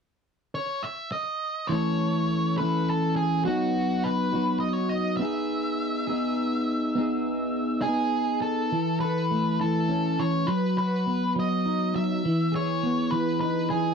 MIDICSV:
0, 0, Header, 1, 3, 480
1, 0, Start_track
1, 0, Key_signature, 4, "major"
1, 0, Tempo, 585366
1, 1392, Time_signature, 6, 3, 24, 8
1, 11432, End_track
2, 0, Start_track
2, 0, Title_t, "Lead electric guitar"
2, 0, Program_c, 0, 29
2, 450, Note_on_c, 0, 73, 75
2, 678, Note_on_c, 0, 76, 82
2, 688, Note_off_c, 0, 73, 0
2, 916, Note_off_c, 0, 76, 0
2, 919, Note_on_c, 0, 75, 72
2, 1372, Note_on_c, 0, 73, 76
2, 1410, Note_off_c, 0, 75, 0
2, 2110, Note_off_c, 0, 73, 0
2, 2113, Note_on_c, 0, 71, 64
2, 2359, Note_off_c, 0, 71, 0
2, 2373, Note_on_c, 0, 69, 63
2, 2591, Note_off_c, 0, 69, 0
2, 2594, Note_on_c, 0, 68, 67
2, 2827, Note_off_c, 0, 68, 0
2, 2830, Note_on_c, 0, 66, 67
2, 3312, Note_on_c, 0, 71, 70
2, 3325, Note_off_c, 0, 66, 0
2, 3768, Note_off_c, 0, 71, 0
2, 3771, Note_on_c, 0, 75, 69
2, 3879, Note_off_c, 0, 75, 0
2, 3879, Note_on_c, 0, 73, 76
2, 4013, Note_off_c, 0, 73, 0
2, 4013, Note_on_c, 0, 75, 71
2, 4236, Note_off_c, 0, 75, 0
2, 4239, Note_on_c, 0, 76, 72
2, 6413, Note_on_c, 0, 68, 70
2, 6621, Note_off_c, 0, 76, 0
2, 6900, Note_off_c, 0, 68, 0
2, 6903, Note_on_c, 0, 69, 68
2, 7380, Note_off_c, 0, 69, 0
2, 7384, Note_on_c, 0, 71, 72
2, 7877, Note_off_c, 0, 71, 0
2, 7880, Note_on_c, 0, 69, 70
2, 8360, Note_on_c, 0, 73, 76
2, 8369, Note_off_c, 0, 69, 0
2, 8584, Note_on_c, 0, 71, 72
2, 8601, Note_off_c, 0, 73, 0
2, 8834, Note_off_c, 0, 71, 0
2, 8843, Note_on_c, 0, 71, 76
2, 9283, Note_off_c, 0, 71, 0
2, 9345, Note_on_c, 0, 75, 82
2, 9802, Note_off_c, 0, 75, 0
2, 9805, Note_on_c, 0, 76, 83
2, 10292, Note_off_c, 0, 76, 0
2, 10296, Note_on_c, 0, 73, 74
2, 10749, Note_on_c, 0, 71, 77
2, 10777, Note_off_c, 0, 73, 0
2, 10973, Note_off_c, 0, 71, 0
2, 10994, Note_on_c, 0, 71, 72
2, 11232, Note_off_c, 0, 71, 0
2, 11235, Note_on_c, 0, 68, 68
2, 11432, Note_off_c, 0, 68, 0
2, 11432, End_track
3, 0, Start_track
3, 0, Title_t, "Clean electric guitar"
3, 0, Program_c, 1, 27
3, 1386, Note_on_c, 1, 52, 62
3, 1396, Note_on_c, 1, 57, 66
3, 1405, Note_on_c, 1, 61, 76
3, 1410, Note_on_c, 1, 69, 70
3, 2094, Note_off_c, 1, 52, 0
3, 2099, Note_off_c, 1, 57, 0
3, 2103, Note_off_c, 1, 69, 0
3, 2104, Note_off_c, 1, 61, 0
3, 2113, Note_on_c, 1, 69, 62
3, 2125, Note_on_c, 1, 61, 59
3, 2130, Note_on_c, 1, 57, 51
3, 2136, Note_on_c, 1, 52, 49
3, 2818, Note_off_c, 1, 69, 0
3, 2821, Note_off_c, 1, 52, 0
3, 2823, Note_off_c, 1, 61, 0
3, 2824, Note_on_c, 1, 54, 68
3, 2826, Note_off_c, 1, 57, 0
3, 2837, Note_on_c, 1, 59, 67
3, 2843, Note_on_c, 1, 63, 71
3, 2849, Note_on_c, 1, 66, 79
3, 3533, Note_off_c, 1, 54, 0
3, 3535, Note_off_c, 1, 66, 0
3, 3545, Note_on_c, 1, 66, 63
3, 3549, Note_off_c, 1, 63, 0
3, 3552, Note_on_c, 1, 63, 60
3, 3557, Note_off_c, 1, 59, 0
3, 3561, Note_on_c, 1, 59, 52
3, 3565, Note_on_c, 1, 54, 55
3, 4252, Note_off_c, 1, 59, 0
3, 4253, Note_off_c, 1, 66, 0
3, 4256, Note_on_c, 1, 59, 66
3, 4263, Note_off_c, 1, 54, 0
3, 4266, Note_off_c, 1, 63, 0
3, 4269, Note_on_c, 1, 63, 73
3, 4281, Note_on_c, 1, 68, 82
3, 4975, Note_off_c, 1, 68, 0
3, 4978, Note_on_c, 1, 68, 71
3, 4990, Note_off_c, 1, 63, 0
3, 4993, Note_on_c, 1, 63, 61
3, 5000, Note_off_c, 1, 59, 0
3, 5003, Note_on_c, 1, 59, 53
3, 5689, Note_off_c, 1, 68, 0
3, 5691, Note_off_c, 1, 59, 0
3, 5697, Note_off_c, 1, 63, 0
3, 5700, Note_on_c, 1, 59, 71
3, 5712, Note_on_c, 1, 63, 65
3, 5725, Note_on_c, 1, 68, 71
3, 6410, Note_off_c, 1, 59, 0
3, 6413, Note_off_c, 1, 68, 0
3, 6416, Note_off_c, 1, 63, 0
3, 6423, Note_on_c, 1, 68, 67
3, 6436, Note_on_c, 1, 63, 63
3, 6443, Note_on_c, 1, 59, 54
3, 7132, Note_off_c, 1, 68, 0
3, 7138, Note_off_c, 1, 63, 0
3, 7141, Note_off_c, 1, 59, 0
3, 7148, Note_on_c, 1, 52, 54
3, 7394, Note_on_c, 1, 69, 55
3, 7632, Note_on_c, 1, 57, 54
3, 7866, Note_off_c, 1, 52, 0
3, 7875, Note_on_c, 1, 52, 54
3, 8107, Note_on_c, 1, 61, 53
3, 8346, Note_off_c, 1, 52, 0
3, 8356, Note_on_c, 1, 52, 53
3, 8586, Note_off_c, 1, 52, 0
3, 8588, Note_off_c, 1, 61, 0
3, 8590, Note_on_c, 1, 54, 59
3, 8591, Note_off_c, 1, 57, 0
3, 8591, Note_off_c, 1, 69, 0
3, 8830, Note_on_c, 1, 66, 56
3, 9073, Note_on_c, 1, 59, 55
3, 9301, Note_off_c, 1, 54, 0
3, 9311, Note_on_c, 1, 54, 60
3, 9557, Note_on_c, 1, 63, 49
3, 9789, Note_off_c, 1, 54, 0
3, 9798, Note_on_c, 1, 54, 53
3, 10030, Note_off_c, 1, 66, 0
3, 10034, Note_off_c, 1, 54, 0
3, 10045, Note_on_c, 1, 52, 56
3, 10070, Note_off_c, 1, 63, 0
3, 10266, Note_on_c, 1, 68, 56
3, 10517, Note_off_c, 1, 59, 0
3, 10520, Note_on_c, 1, 59, 58
3, 10751, Note_off_c, 1, 52, 0
3, 10755, Note_on_c, 1, 52, 56
3, 10999, Note_on_c, 1, 63, 53
3, 11235, Note_off_c, 1, 52, 0
3, 11238, Note_on_c, 1, 52, 56
3, 11432, Note_off_c, 1, 52, 0
3, 11432, Note_off_c, 1, 59, 0
3, 11432, Note_off_c, 1, 63, 0
3, 11432, Note_off_c, 1, 68, 0
3, 11432, End_track
0, 0, End_of_file